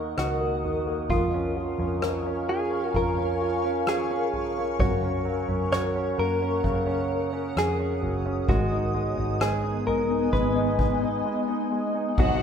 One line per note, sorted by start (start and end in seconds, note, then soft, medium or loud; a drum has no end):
0.00 0.14 D#2 medium
0.00 0.17 D#3 medium
0.00 0.41 A#3 soft
0.00 0.18 A#4 medium
0.00 8.45 A#4 medium
0.00 1.07 D#5 medium
0.00 1.07 F#5 medium
0.00 1.08 D#6 medium
0.17 0.64 C#2 medium
0.17 0.63 D#3 soft
0.17 1.10 F#4 medium
0.17 cross-stick medium
0.41 0.85 A#3 soft
0.64 1.07 D#2 medium
0.64 1.09 D#3 soft
0.64 floor tom soft
0.87 1.09 A#3 soft
1.08 1.75 F2 medium
1.08 1.55 F3 medium
1.08 2.49 F4 medium
1.08 4.75 F5 medium
1.08 4.75 G#5 medium
1.08 6.59 C#6 medium
1.08 kick medium
1.08 floor tom medium
1.34 1.78 C#4 soft
1.57 2.01 F3 soft
1.78 2.90 F2 medium
1.78 2.25 C#4 soft
1.78 floor tom medium
2.02 2.47 F3 soft
2.02 cross-stick medium
2.26 2.70 C#4 medium
2.49 2.93 F3 medium
2.49 2.96 G#4 medium
2.71 3.17 C#4 soft
2.94 4.29 F2 medium
2.94 3.40 F3 medium
2.94 3.88 A#4 medium
2.94 kick medium
2.94 floor tom medium
3.18 3.63 C#4 medium
3.42 3.86 F3 medium
3.65 4.09 C#4 soft
3.87 4.32 F3 medium
3.87 4.80 G#4 medium
3.87 cross-stick medium
4.11 4.56 C#4 soft
4.33 4.78 F3 soft
4.33 floor tom soft
4.58 4.79 C#4 soft
4.79 5.45 F#2 loud
4.79 8.45 F#4 medium
4.79 8.45 C#5 medium
4.79 5.71 C#5 medium
4.79 8.45 F#5 medium
4.79 kick medium
4.79 floor tom medium
5.03 5.47 C#4 soft
5.25 5.70 F#3 medium
5.48 6.14 F#2 medium
5.48 5.94 C#4 soft
5.48 floor tom medium
5.72 7.52 F#3 medium
5.72 6.19 C#5 medium
5.72 cross-stick loud
5.95 6.40 C#4 medium
6.18 6.61 F#2 medium
6.18 7.99 A#3 medium
6.18 7.58 A#4 medium
6.42 6.85 C#4 soft
6.64 7.53 F#2 medium
6.64 8.44 C#3 medium
6.64 12.14 D#6 medium
6.64 kick medium
6.64 floor tom medium
6.87 7.31 C#4 medium
7.33 7.78 C#4 medium
7.57 7.99 F2 medium
7.57 8.52 G#4 medium
7.57 cross-stick medium
7.80 8.24 C#4 soft
8.01 8.45 F#1 medium
8.01 8.47 F#3 soft
8.01 floor tom medium
8.26 8.48 C#4 medium
8.47 9.14 G#1 loud
8.47 8.93 G#3 medium
8.47 12.14 B3 medium
8.47 9.44 F#4 medium
8.47 12.14 D#5 medium
8.47 12.14 G#5 medium
8.47 kick medium
8.47 floor tom loud
8.72 9.16 D#4 medium
8.94 9.40 G#3 medium
9.17 10.29 G#1 medium
9.17 9.62 D#4 medium
9.17 floor tom medium
9.41 9.85 G#3 medium
9.41 9.86 G#4 medium
9.41 cross-stick loud
9.63 10.08 D#4 medium
9.87 10.32 G#3 medium
9.87 10.32 A#4 medium
9.87 floor tom medium
10.10 10.54 D#4 medium
10.33 11.21 G#1 medium
10.33 10.78 G#3 medium
10.33 11.68 B4 medium
10.33 kick medium
10.33 floor tom medium
10.56 11.01 D#4 medium
10.79 11.23 G#3 medium
10.79 kick medium
11.02 11.47 D#4 medium
11.25 11.70 G#3 medium
11.48 11.94 D#4 medium
11.72 12.16 G#3 soft
11.95 12.17 D#4 medium
12.18 12.43 B1 loud
12.18 12.43 F#3 medium
12.18 12.43 D#4 medium
12.18 12.43 F#4 medium
12.18 12.43 D#5 medium
12.18 12.43 F#5 medium
12.18 12.43 D#6 medium
12.18 kick loud
12.18 floor tom loud
12.18 crash medium